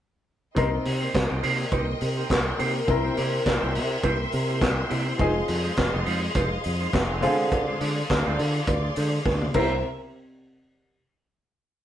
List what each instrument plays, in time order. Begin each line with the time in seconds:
0.55 fingered electric bass C2, grand piano C3 C4 D#4 A#4, clean electric guitar A#3 D#4 G4 C5, string section A#4 D#5 G5 C6, kick, closed hi-hat, cowbell
0.73 muted clean electric guitar stroke
0.85 fingered electric bass C3, muted clean electric guitar stroke, open hi-hat
1.01 clean electric guitar A#3 D#4 G4 C5
1.14 fingered electric bass C2, muted clean electric guitar stroke, kick, snare, clap, closed hi-hat, cowbell
1.30 fingered electric bass C2, clean electric guitar A#3 D#4 G4 D5
1.43 fingered electric bass C3, clean electric guitar A#3 D#4 G4 C5, open hi-hat
1.60 muted clean electric guitar stroke
1.72 fingered electric bass C2, clean electric guitar A#3 D#4 G4 C5, kick, closed hi-hat, cowbell
1.89 muted clean electric guitar stroke
2.01 fingered electric bass C3, muted clean electric guitar stroke, open hi-hat
2.17 clean electric guitar A#3 D#4 G4 C5
2.30 fingered electric bass C2, muted clean electric guitar stroke, kick, snare, clap, closed hi-hat, cowbell
2.46 muted clean electric guitar stroke
2.59 fingered electric bass C3, clean electric guitar A#3 D#4 G4 C5, open hi-hat
2.75 muted clean electric guitar stroke
2.87 fingered electric bass C2, grand piano C3 C4 E4 A#4, string section E5, muted clean electric guitar stroke, kick, closed hi-hat, cowbell
3.04 clean electric guitar A#3 E4 G4 C5
3.16 fingered electric bass C3, clean electric guitar A#3 E4 G4 D5, open hi-hat
3.32 muted clean electric guitar stroke
3.46 fingered electric bass C2, muted clean electric guitar stroke, kick, snare, clap, closed hi-hat, cowbell
3.62 fingered electric bass C2, clean electric guitar A#3 E4 G4 C5
3.75 fingered electric bass C3, open hi-hat
3.91 muted clean electric guitar stroke
4.03 fingered electric bass C2, clean electric guitar A#3 E4 G4 C5, kick, closed hi-hat, cowbell
4.20 muted clean electric guitar stroke
4.32 fingered electric bass C3, muted clean electric guitar stroke, open hi-hat
4.49 clean electric guitar A#3 E4 G4 C5
4.61 fingered electric bass C2, kick, snare, clap, closed hi-hat, cowbell
4.89 fingered electric bass C3, clean electric guitar A#3 E4 G4 D5, open hi-hat
5.06 clean electric guitar A#3 E4 G4 C5
5.18 fingered electric bass F1, grand piano F3 C4 D#4 G#4, clean electric guitar G#3 D#4 F4 C5, string section G#4 D#5 F5, kick, closed hi-hat, cowbell
5.35 muted clean electric guitar stroke
5.48 fingered electric bass F2, muted clean electric guitar stroke, open hi-hat
5.64 clean electric guitar G#3 D#4 F4 C5
5.77 fingered electric bass F1, muted clean electric guitar stroke, kick, snare, clap, closed hi-hat, cowbell
5.93 fingered electric bass F1, clean electric guitar G#3 D#4 F4 D5
6.06 fingered electric bass F2, clean electric guitar G#3 D#4 F4 C5, open hi-hat
6.22 muted clean electric guitar stroke
6.35 fingered electric bass F1, clean electric guitar G#3 D#4 F4 C5, kick, closed hi-hat, cowbell
6.52 muted clean electric guitar stroke
6.64 fingered electric bass F2, muted clean electric guitar stroke, open hi-hat
6.81 clean electric guitar G#3 D#4 F4 C5
6.93 fingered electric bass F1, muted clean electric guitar stroke, kick, snare, clap, closed hi-hat, cowbell
7.10 muted clean electric guitar stroke
7.21 grand piano D3 C4 F4 G#4, fingered electric bass D3, clean electric guitar G#3 D4 F4 C5, string section D5, open hi-hat
7.39 muted clean electric guitar stroke
7.52 muted clean electric guitar stroke, kick, closed hi-hat, cowbell
7.68 clean electric guitar G#3 D4 F4 C5
7.80 fingered electric bass D3, clean electric guitar G#3 D4 F4 D5, open hi-hat
7.97 muted clean electric guitar stroke
8.10 fingered electric bass D2, kick, snare, clap, closed hi-hat, cowbell
8.26 fingered electric bass D2, clean electric guitar G#3 D4 F4 C5
8.39 fingered electric bass D3, muted clean electric guitar stroke, open hi-hat
8.55 muted clean electric guitar stroke
8.67 fingered electric bass D2, muted clean electric guitar stroke, kick, closed hi-hat, cowbell
8.84 muted clean electric guitar stroke
8.96 fingered electric bass D3, clean electric guitar G#3 D4 F4 C5, open hi-hat
9.13 muted clean electric guitar stroke
9.26 fingered electric bass D2, muted clean electric guitar stroke, kick, snare, cowbell
9.41 muted clean electric guitar stroke, high tom
9.54 fingered electric bass C2, string section C3 C4 A#4 E5, grand piano C3 C4 E4 A#4, clean electric guitar A#3 E4 G4 C5, kick, crash, cowbell